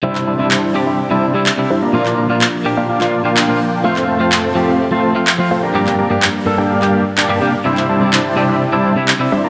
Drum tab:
CP |-x--x-------x---|-x--x----x--x---|-x--x-------x---|-x--x----x--x---|

CP |-x--x-------x---|